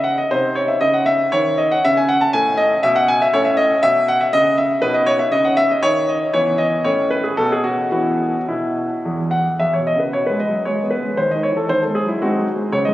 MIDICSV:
0, 0, Header, 1, 2, 480
1, 0, Start_track
1, 0, Tempo, 503778
1, 294, Time_signature, 3, 2, 24, 8
1, 6532, Tempo, 534283
1, 7492, Tempo, 559180
1, 8932, Tempo, 519031
1, 12018, End_track
2, 0, Start_track
2, 0, Title_t, "Grand piano"
2, 0, Program_c, 0, 0
2, 0, Note_on_c, 0, 49, 56
2, 0, Note_on_c, 0, 63, 39
2, 34, Note_on_c, 0, 78, 80
2, 164, Note_off_c, 0, 78, 0
2, 169, Note_on_c, 0, 75, 77
2, 187, Note_off_c, 0, 49, 0
2, 259, Note_off_c, 0, 63, 0
2, 292, Note_off_c, 0, 75, 0
2, 292, Note_on_c, 0, 63, 38
2, 295, Note_on_c, 0, 48, 55
2, 295, Note_on_c, 0, 72, 87
2, 528, Note_on_c, 0, 73, 76
2, 538, Note_off_c, 0, 72, 0
2, 647, Note_on_c, 0, 76, 60
2, 655, Note_off_c, 0, 73, 0
2, 684, Note_off_c, 0, 48, 0
2, 768, Note_on_c, 0, 75, 95
2, 772, Note_on_c, 0, 49, 62
2, 775, Note_off_c, 0, 76, 0
2, 891, Note_on_c, 0, 78, 67
2, 895, Note_off_c, 0, 75, 0
2, 1008, Note_on_c, 0, 76, 87
2, 1017, Note_off_c, 0, 78, 0
2, 1163, Note_off_c, 0, 49, 0
2, 1258, Note_off_c, 0, 76, 0
2, 1258, Note_on_c, 0, 73, 98
2, 1267, Note_on_c, 0, 51, 63
2, 1503, Note_on_c, 0, 75, 73
2, 1507, Note_off_c, 0, 73, 0
2, 1629, Note_off_c, 0, 75, 0
2, 1634, Note_on_c, 0, 78, 83
2, 1658, Note_off_c, 0, 51, 0
2, 1716, Note_off_c, 0, 63, 0
2, 1755, Note_off_c, 0, 78, 0
2, 1758, Note_on_c, 0, 49, 60
2, 1759, Note_on_c, 0, 76, 102
2, 1760, Note_on_c, 0, 61, 44
2, 1877, Note_off_c, 0, 76, 0
2, 1878, Note_on_c, 0, 80, 79
2, 1987, Note_on_c, 0, 78, 92
2, 1996, Note_off_c, 0, 80, 0
2, 2105, Note_on_c, 0, 81, 84
2, 2109, Note_off_c, 0, 78, 0
2, 2136, Note_off_c, 0, 49, 0
2, 2223, Note_on_c, 0, 80, 104
2, 2226, Note_off_c, 0, 81, 0
2, 2229, Note_on_c, 0, 45, 68
2, 2423, Note_off_c, 0, 80, 0
2, 2453, Note_on_c, 0, 75, 93
2, 2601, Note_off_c, 0, 45, 0
2, 2654, Note_off_c, 0, 75, 0
2, 2697, Note_on_c, 0, 76, 101
2, 2700, Note_on_c, 0, 47, 77
2, 2813, Note_off_c, 0, 76, 0
2, 2816, Note_on_c, 0, 78, 95
2, 2931, Note_off_c, 0, 78, 0
2, 2938, Note_on_c, 0, 80, 101
2, 3052, Note_off_c, 0, 80, 0
2, 3065, Note_on_c, 0, 76, 90
2, 3075, Note_off_c, 0, 47, 0
2, 3130, Note_off_c, 0, 61, 0
2, 3175, Note_off_c, 0, 76, 0
2, 3176, Note_on_c, 0, 45, 69
2, 3178, Note_on_c, 0, 73, 98
2, 3181, Note_on_c, 0, 61, 49
2, 3285, Note_on_c, 0, 76, 81
2, 3291, Note_off_c, 0, 73, 0
2, 3401, Note_on_c, 0, 75, 99
2, 3403, Note_off_c, 0, 76, 0
2, 3552, Note_off_c, 0, 45, 0
2, 3640, Note_off_c, 0, 75, 0
2, 3646, Note_on_c, 0, 76, 110
2, 3654, Note_on_c, 0, 47, 69
2, 3882, Note_off_c, 0, 76, 0
2, 3890, Note_on_c, 0, 78, 102
2, 4005, Note_off_c, 0, 78, 0
2, 4007, Note_on_c, 0, 76, 78
2, 4031, Note_off_c, 0, 47, 0
2, 4123, Note_off_c, 0, 76, 0
2, 4127, Note_on_c, 0, 75, 118
2, 4132, Note_on_c, 0, 49, 77
2, 4360, Note_off_c, 0, 75, 0
2, 4360, Note_on_c, 0, 76, 76
2, 4506, Note_off_c, 0, 49, 0
2, 4562, Note_off_c, 0, 61, 0
2, 4589, Note_on_c, 0, 71, 102
2, 4594, Note_off_c, 0, 76, 0
2, 4594, Note_on_c, 0, 63, 52
2, 4596, Note_on_c, 0, 47, 74
2, 4707, Note_on_c, 0, 75, 84
2, 4709, Note_off_c, 0, 71, 0
2, 4825, Note_on_c, 0, 73, 106
2, 4828, Note_off_c, 0, 75, 0
2, 4945, Note_on_c, 0, 76, 79
2, 4948, Note_off_c, 0, 73, 0
2, 4979, Note_off_c, 0, 47, 0
2, 5066, Note_on_c, 0, 75, 103
2, 5067, Note_on_c, 0, 49, 65
2, 5070, Note_off_c, 0, 76, 0
2, 5189, Note_on_c, 0, 78, 79
2, 5192, Note_off_c, 0, 75, 0
2, 5305, Note_on_c, 0, 76, 101
2, 5314, Note_off_c, 0, 78, 0
2, 5433, Note_off_c, 0, 76, 0
2, 5439, Note_on_c, 0, 75, 69
2, 5460, Note_off_c, 0, 49, 0
2, 5551, Note_on_c, 0, 73, 119
2, 5555, Note_on_c, 0, 51, 72
2, 5560, Note_off_c, 0, 75, 0
2, 5796, Note_off_c, 0, 73, 0
2, 5797, Note_on_c, 0, 75, 72
2, 5942, Note_off_c, 0, 51, 0
2, 6003, Note_off_c, 0, 75, 0
2, 6004, Note_off_c, 0, 63, 0
2, 6036, Note_on_c, 0, 73, 97
2, 6037, Note_on_c, 0, 59, 46
2, 6040, Note_on_c, 0, 52, 68
2, 6271, Note_on_c, 0, 75, 85
2, 6281, Note_off_c, 0, 73, 0
2, 6432, Note_off_c, 0, 52, 0
2, 6494, Note_off_c, 0, 59, 0
2, 6521, Note_on_c, 0, 73, 88
2, 6523, Note_on_c, 0, 61, 43
2, 6524, Note_off_c, 0, 75, 0
2, 6525, Note_on_c, 0, 45, 61
2, 6726, Note_off_c, 0, 73, 0
2, 6756, Note_on_c, 0, 71, 77
2, 6874, Note_on_c, 0, 68, 60
2, 6880, Note_off_c, 0, 71, 0
2, 6907, Note_off_c, 0, 45, 0
2, 6967, Note_off_c, 0, 61, 0
2, 6996, Note_on_c, 0, 69, 91
2, 6997, Note_on_c, 0, 47, 64
2, 6999, Note_off_c, 0, 68, 0
2, 7002, Note_on_c, 0, 59, 43
2, 7120, Note_off_c, 0, 69, 0
2, 7131, Note_on_c, 0, 68, 70
2, 7235, Note_on_c, 0, 66, 75
2, 7248, Note_off_c, 0, 68, 0
2, 7389, Note_off_c, 0, 47, 0
2, 7455, Note_off_c, 0, 59, 0
2, 7475, Note_off_c, 0, 66, 0
2, 7485, Note_on_c, 0, 64, 35
2, 7489, Note_on_c, 0, 52, 43
2, 7489, Note_on_c, 0, 66, 70
2, 7490, Note_on_c, 0, 59, 40
2, 7830, Note_off_c, 0, 52, 0
2, 7876, Note_off_c, 0, 64, 0
2, 7879, Note_off_c, 0, 59, 0
2, 7902, Note_off_c, 0, 66, 0
2, 7973, Note_on_c, 0, 64, 59
2, 7977, Note_on_c, 0, 47, 48
2, 8310, Note_off_c, 0, 47, 0
2, 8460, Note_on_c, 0, 40, 51
2, 8584, Note_off_c, 0, 64, 0
2, 8680, Note_on_c, 0, 78, 60
2, 8792, Note_off_c, 0, 40, 0
2, 8888, Note_off_c, 0, 78, 0
2, 8926, Note_on_c, 0, 76, 66
2, 8932, Note_on_c, 0, 40, 45
2, 9052, Note_off_c, 0, 76, 0
2, 9055, Note_on_c, 0, 73, 53
2, 9091, Note_off_c, 0, 40, 0
2, 9106, Note_on_c, 0, 47, 33
2, 9177, Note_off_c, 0, 73, 0
2, 9179, Note_on_c, 0, 75, 66
2, 9259, Note_on_c, 0, 49, 34
2, 9271, Note_off_c, 0, 47, 0
2, 9297, Note_on_c, 0, 71, 43
2, 9299, Note_off_c, 0, 75, 0
2, 9419, Note_off_c, 0, 71, 0
2, 9420, Note_off_c, 0, 49, 0
2, 9423, Note_on_c, 0, 73, 62
2, 9431, Note_on_c, 0, 47, 32
2, 9543, Note_off_c, 0, 73, 0
2, 9545, Note_on_c, 0, 71, 62
2, 9575, Note_on_c, 0, 56, 37
2, 9595, Note_off_c, 0, 47, 0
2, 9664, Note_off_c, 0, 71, 0
2, 9666, Note_on_c, 0, 75, 56
2, 9748, Note_off_c, 0, 56, 0
2, 9748, Note_on_c, 0, 54, 28
2, 9870, Note_off_c, 0, 75, 0
2, 9905, Note_on_c, 0, 73, 60
2, 9907, Note_off_c, 0, 54, 0
2, 9909, Note_on_c, 0, 56, 38
2, 10066, Note_on_c, 0, 59, 31
2, 10077, Note_off_c, 0, 56, 0
2, 10137, Note_on_c, 0, 71, 57
2, 10148, Note_off_c, 0, 73, 0
2, 10230, Note_on_c, 0, 56, 32
2, 10237, Note_off_c, 0, 59, 0
2, 10386, Note_off_c, 0, 71, 0
2, 10386, Note_on_c, 0, 72, 64
2, 10391, Note_on_c, 0, 39, 43
2, 10392, Note_off_c, 0, 56, 0
2, 10510, Note_off_c, 0, 72, 0
2, 10513, Note_on_c, 0, 75, 55
2, 10548, Note_off_c, 0, 39, 0
2, 10554, Note_on_c, 0, 51, 36
2, 10624, Note_on_c, 0, 73, 65
2, 10633, Note_off_c, 0, 75, 0
2, 10705, Note_on_c, 0, 52, 30
2, 10721, Note_off_c, 0, 51, 0
2, 10748, Note_off_c, 0, 73, 0
2, 10749, Note_on_c, 0, 69, 52
2, 10867, Note_on_c, 0, 51, 36
2, 10867, Note_on_c, 0, 72, 75
2, 10868, Note_off_c, 0, 52, 0
2, 10870, Note_off_c, 0, 69, 0
2, 10988, Note_off_c, 0, 72, 0
2, 10988, Note_on_c, 0, 69, 48
2, 11030, Note_on_c, 0, 56, 36
2, 11036, Note_off_c, 0, 51, 0
2, 11103, Note_on_c, 0, 68, 63
2, 11108, Note_off_c, 0, 69, 0
2, 11196, Note_on_c, 0, 54, 31
2, 11197, Note_off_c, 0, 56, 0
2, 11225, Note_off_c, 0, 68, 0
2, 11228, Note_on_c, 0, 64, 48
2, 11348, Note_off_c, 0, 64, 0
2, 11351, Note_off_c, 0, 54, 0
2, 11351, Note_on_c, 0, 66, 65
2, 11354, Note_on_c, 0, 56, 42
2, 11361, Note_on_c, 0, 60, 46
2, 11364, Note_on_c, 0, 63, 48
2, 11508, Note_on_c, 0, 54, 33
2, 11517, Note_off_c, 0, 56, 0
2, 11576, Note_off_c, 0, 60, 0
2, 11577, Note_off_c, 0, 63, 0
2, 11587, Note_off_c, 0, 66, 0
2, 11667, Note_on_c, 0, 56, 34
2, 11672, Note_off_c, 0, 54, 0
2, 11820, Note_off_c, 0, 56, 0
2, 11820, Note_on_c, 0, 73, 71
2, 11821, Note_on_c, 0, 37, 49
2, 11935, Note_off_c, 0, 73, 0
2, 11936, Note_on_c, 0, 75, 68
2, 11969, Note_off_c, 0, 37, 0
2, 11969, Note_on_c, 0, 44, 41
2, 12018, Note_off_c, 0, 44, 0
2, 12018, Note_off_c, 0, 75, 0
2, 12018, End_track
0, 0, End_of_file